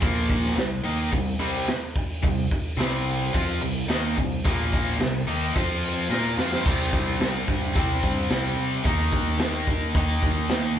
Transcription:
0.00 A#1 A#2 F3 A#3, kick, open hi-hat
0.29 kick, open hi-hat
0.45 snare
0.56 C2 C3 G3, snare, open hi-hat
0.83 D#2 D#3 A#3 D#4, open hi-hat
1.12 C2 C3 G3, kick, open hi-hat
1.39 C2 C3 G3 C4, open hi-hat
1.68 snare, open hi-hat
1.95 kick, open hi-hat
2.23 C2 C3 G3, kick, open hi-hat
2.51 kick, open hi-hat
2.77 C2 C3 G3 C4, snare, open hi-hat
3.07 open hi-hat
3.33 F2 F3 C4 F4, kick, open hi-hat
3.61 C2 C3 G3, open hi-hat
3.88 D#2 D#3 A#3 D#4, snare, open hi-hat
4.17 C2 C3 G3, kick, open hi-hat
4.45 A#1 A#2 F3 A#3, kick, open hi-hat
4.73 kick, open hi-hat
4.99 C2 C3 G3, snare, open hi-hat
5.27 D#2 D#3 A#3 D#4, open hi-hat
5.55 F2 F3 C4 F4, kick, open hi-hat
5.84 open hi-hat
6.09 A#2 A#3 F4 A#4, snare
6.37 F2 F3 C4 F4, snare
6.53 snare
6.64 C2 C3 G3 C4, kick, crash
6.93 C2, kick
7.19 C2, snare, open hi-hat
7.48 G2, kick
7.74 C2 C3 G3 C4, kick, open hi-hat
8.03 G2, kick
8.29 C2, snare, open hi-hat
8.56 C3
8.84 D#2 D#3 A#3 D#4, kick, open hi-hat
9.12 D#2, kick
9.38 D#2, snare, open hi-hat
9.67 kick
9.94 D#2 D#3 A#3 D#4, kick, open hi-hat
10.23 D#2, kick
10.49 D#2, snare, open hi-hat

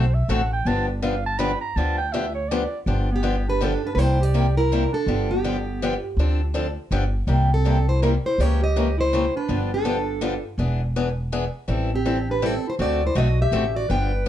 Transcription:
Already playing: B1 C5
0.14 E5
0.28 A1 D3 A3 C4 F#4 A4 F#5
0.53 G5
0.65 G1 D3 F3 B3 D4 G4 A5
0.89 D5
1.02 D3 F3 B3 D4 G4 F5
1.26 A5
1.39 D3 F3 B3 D4 G4 B5
1.61 A#5
1.76 D2 D3 F3 B3 D4 G4 A5
1.98 G5
2.12 D3 F3 B3 D4 G4 E5
2.35 C#5
2.48 D3 F3 B3 D4 G4 D5
2.86 G1 D3 F3 B3 D4 G4
3.11 B3
3.16 G4
3.23 D3 F3 B3 D4 G4
3.48 D4 B4
3.61 D3 F3 B3 D4 G4 A4
3.85 D4 B4
3.92 C2 D4 B4
3.97 C3 G3 A#3 E4 G4 C5
4.21 G4 D5
4.34 C3 G3 A#3 E4 G4
4.57 E4 A#4
4.72 C3 G3 A#3 E4 G4
4.93 D4 A4
5.06 G1 D3 F3 B3 D4 G4
5.30 B3 G4
5.44 D3 F3 B3 D4 G4
5.82 D3 F3 B3 D4 G4
6.17 D2 D3 F3 C4 D4 A4
6.54 D3 F3 C4 D4 A4
6.91 G1 D3 F3 B3 D4 G4
7.27 C2 C3 G3 A#3 E4 G4
7.52 C4 A4
7.65 C3 G3 A#3 E4 G4
7.89 E4 C5
8.02 C3 G3 A#3 E4 G4 A#4
8.26 E4 C5
8.38 C#2 C#3 E3 A#3 C#4 G4 C#5
8.61 G4 D#5
8.76 C#3 E3 A#3 C#4 G4
8.98 E4 C5
9.13 C#3 E3 A#3 C#4 G4
9.36 D4 B4
9.48 G1 D3 F3 B3 D4 G4
9.74 D4 A4
9.85 D3 F3 B3 D4 G4
10.21 D3 F3 B3 D4 G4
10.58 E1 E3 B3 D4 G#4
10.96 E3 B3 D4 G#4
11.32 E3 B3 D4 G#4
11.68 A1 E3 G3 C4 E4 A4
11.94 C4 G4
12.05 E3 G3 C4 E4 A4
12.29 D4 B4
12.42 E3 G3 C4 E4 A4
12.67 E4 C5
12.79 D2 D3 A3 C4 F#4 A4 D5
13.05 E4 C5
13.15 B1 D3 A3 C4 F#4 A4 D#5
13.41 G4 E5
13.51 A1 D3 A3 C4 F#4 A4
13.75 F#4 D5
13.89 G1 D3 F3 B3 D4 G4 B4 G5

